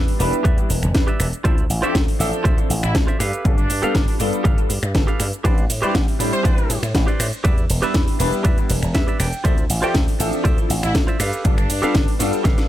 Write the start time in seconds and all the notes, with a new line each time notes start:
Already playing: G3 B3 D4 E4 B4
0.08 open hi-hat, cabasa
0.19 E1 G3 B3 D4 E4 B4, muted clean electric guitar stroke, open hi-hat, cabasa
0.33 closed hi-hat, cabasa
0.44 E2 G4 B4 D5 E5, kick, closed hi-hat, cabasa
0.57 G3 B3 D4 E4 B4, closed hi-hat, cabasa
0.69 E1, muted clean electric guitar stroke, open hi-hat, cabasa
0.83 E1, finger snap, closed hi-hat, cabasa
0.94 E2 G3 B3 D4 E4 B4, kick, snare, closed hi-hat, cabasa
1.07 G4 B4 D5 E5, closed hi-hat, cabasa
1.20 E1, finger snap, open hi-hat, cabasa
1.33 closed hi-hat, cabasa
1.44 D2 F3 C4 D4 E4 F4 A4 C5 D5 E5, kick, closed hi-hat, cabasa
1.58 closed hi-hat, cabasa
1.70 A1, open hi-hat, cabasa
1.82 F3 C4 D4 F4 G4 A4 C5 D5 E5, muted slap bass stroke, closed hi-hat, cabasa
1.95 D2, kick, snare, closed hi-hat, cabasa
2.08 open hi-hat, cabasa
2.19 A1 F3 C4 D4 A4 E5, muted clean electric guitar stroke, open hi-hat, cabasa
2.33 closed hi-hat, cabasa
2.44 D2 F4 C5 D5 E5, kick, closed hi-hat, cabasa
2.58 F3 C4 D4 E4 A4, closed hi-hat, cabasa
2.69 A1, muted clean electric guitar stroke, open hi-hat, cabasa
2.83 A1 E4, finger snap, closed hi-hat, cabasa
2.95 F3 C4 D4 E4 A4, kick, snare, closed hi-hat, cabasa
3.07 F4 C5 D5 E5, closed hi-hat, cabasa
3.19 G2 G4 A4 B4 F5, finger snap, open hi-hat, cabasa
3.33 closed hi-hat, cabasa
3.44 G1 G3 B3 D4 F4 A4, kick, closed hi-hat, cabasa
3.58 closed hi-hat, cabasa
3.70 G2, open hi-hat, cabasa
3.82 G3 B3 D4 F4 G4 A4 B4 F5, muted slap bass stroke, closed hi-hat, cabasa
3.95 G1, kick, snare, closed hi-hat, cabasa
4.08 open hi-hat, cabasa
4.19 G2 G3 B3 D4 F4 A4, muted clean electric guitar stroke, open hi-hat, cabasa
4.33 closed hi-hat, cabasa
4.44 G1 G4 A4 B4 F5, kick, closed hi-hat, cabasa
4.57 G3 B3 D4 F4 A4, closed hi-hat, cabasa
4.69 G2, muted clean electric guitar stroke, open hi-hat, cabasa
4.83 G2, finger snap, closed hi-hat, cabasa
4.94 G1 G3 B3 D4 F4 A4, kick, snare, closed hi-hat, cabasa
5.07 G4 A4 B4 F5, closed hi-hat, cabasa
5.20 G2, finger snap, open hi-hat, cabasa
5.33 closed hi-hat, cabasa
5.44 A1 G3 C4 D4 E4 G4 B4 C5 D5, kick, closed hi-hat, ride, cabasa
5.58 closed hi-hat, cabasa
5.70 A2, open hi-hat, ride, cabasa
5.82 G3 C4 D4 E4 G4 B4 C5 D5 B5, muted slap bass stroke, closed hi-hat, cabasa
5.95 A1, kick, snare, closed hi-hat, ride, cabasa
6.08 open hi-hat, cabasa
6.19 A2 G3 C4 D4 E4 B5, muted clean electric guitar stroke, open hi-hat, ride, cabasa
6.33 C5, closed hi-hat, cabasa
6.44 A1 G4 B4 C5 D5, kick, closed hi-hat, ride, cabasa
6.57 G3 C4 D4 E4 B4, closed hi-hat, cabasa
6.69 A2, muted clean electric guitar stroke, open hi-hat, ride, cabasa
6.83 A2, finger snap, closed hi-hat, cabasa
6.94 A1 G3 C4 D4 E4 B4, kick, snare, closed hi-hat, ride, cabasa
7.07 G4 B4 C5 D5, closed hi-hat, cabasa
7.20 A2, finger snap, open hi-hat, ride, cabasa
7.33 closed hi-hat, cabasa
7.44 E2 G3 B3 D4 E4 G4 B4 D5 E5, kick, closed hi-hat, ride, cabasa
7.58 closed hi-hat, cabasa
7.70 E1, open hi-hat, ride, cabasa
7.82 G3 B3 D4 E4 G4 B4 D5 E5, muted slap bass stroke, closed hi-hat, cabasa
7.94 E2, kick, snare, closed hi-hat, ride, cabasa
8.08 open hi-hat, cabasa
8.19 E1 G3 B3 D4 E4 B4, muted clean electric guitar stroke, open hi-hat, ride, cabasa
8.33 closed hi-hat, cabasa
8.44 E2 G4 B4 D5 E5, kick, closed hi-hat, ride, cabasa
8.58 G3 B3 D4 E4 B4, closed hi-hat, cabasa
8.69 E1, muted clean electric guitar stroke, open hi-hat, ride, cabasa
8.83 E1, finger snap, closed hi-hat, cabasa
8.95 E2 G3 B3 D4 E4 B4 E5, kick, snare, closed hi-hat, ride, cabasa
9.07 G4 B4 D5 E5, closed hi-hat, cabasa
9.20 E1 G5, finger snap, open hi-hat, ride, cabasa
9.33 closed hi-hat, cabasa
9.44 D2 F3 C4 D4 E4 F4 A4 C5 D5 E5, kick, closed hi-hat, ride, cabasa
9.58 closed hi-hat, cabasa
9.70 A1, open hi-hat, ride, cabasa
9.82 F3 C4 D4 F4 G4 A4 C5 D5 E5 G5, muted slap bass stroke, closed hi-hat, cabasa
9.94 D2, kick, snare, closed hi-hat, ride, cabasa
10.08 open hi-hat, cabasa
10.19 A1 F3 C4 D4 A4 E5, muted clean electric guitar stroke, open hi-hat, ride, cabasa
10.33 closed hi-hat, cabasa
10.44 D2 F4 C5 D5 E5, kick, closed hi-hat, ride, cabasa
10.57 F3 C4 D4 E4 A4, closed hi-hat, cabasa
10.69 A1, muted clean electric guitar stroke, open hi-hat, ride, cabasa
10.83 A1 E4, finger snap, closed hi-hat, cabasa
10.94 F3 C4 D4 E4 A4, kick, snare, closed hi-hat, ride, cabasa
11.07 F4 C5 D5 E5, closed hi-hat, cabasa
11.19 G2 G4 A4 B4 F5, finger snap, open hi-hat, ride, cabasa
11.33 closed hi-hat, cabasa
11.44 G1 G3 B3 D4 F4 A4, kick, closed hi-hat, ride, cabasa
11.58 finger snap, closed hi-hat, cabasa
11.70 G2, open hi-hat, ride, cabasa
11.82 G3 B3 D4 F4 G4 A4 B4 F5, muted slap bass stroke, closed hi-hat, cabasa
11.95 G1, kick, snare, closed hi-hat, ride, cabasa
12.08 open hi-hat, cabasa
12.19 G2 G3 B3 D4 F4 A4, muted clean electric guitar stroke, snare, open hi-hat, ride, cabasa
12.33 closed hi-hat, cabasa
12.44 G1 G4 A4 B4 F5, kick, snare, closed hi-hat, ride, cabasa
12.58 G3 B3 D4 F4 A4, snare, closed hi-hat, cabasa